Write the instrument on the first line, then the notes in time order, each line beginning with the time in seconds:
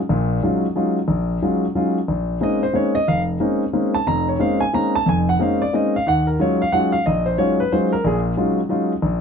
grand piano
0.09 A#1 A#2
0.43 F#3 G#3 C#4 D#4 F4
0.76 F#3 G#3 C#4 D#4 F4
1.08 A#1
1.42 F#3 G#3 C#4 D#4 F4
1.75 F#3 G#3 C#4 D#4 F4
2.08 A#1
2.41 G#3 A#3 C4 C#4 D#4 D#5
2.63 C5
2.73 G#3 A#3 C4 C#4 D#4 C#5
2.95 D#5
3.08 F1 F5
3.40 G#3 A#3 C4 C#4 D#4
3.73 G#3 A#3 C4 C#4 D#4
3.94 A5
4.07 F1 F2 A#5
4.29 C#5
4.39 G#3 A#3 C4 C#4 D#4 F5
4.61 G#5
4.73 G#3 A#3 C4 C#4 D#4 A#5
4.95 A5
5.06 F1 F2 G#5
5.29 F#5
5.39 G#3 A#3 C4 C#4 D#4 F5
5.62 D5
5.73 G#3 A#3 C4 C#4 D#4 D#5
5.96 F5
6.07 D#2 D#3 F#5
6.27 A#4
6.39 F#3 G#3 C#4 D#4 F4 C#5
6.62 F5
6.72 F#3 G#3 C#4 D#4 F4 F#5
6.92 F5
7.06 A#1 D#5
7.26 C5
7.38 F#3 G#3 C#4 D#4 F4 C#5
7.60 B4
7.72 F#3 G#3 C#4 D#4 F4 C5
7.93 A#4
8.05 A#1 A#2 G#4
8.37 F#3 G#3 C#4 D#4 F4
8.69 F#3 G#3 C#4 D#4 F4
9.02 A#1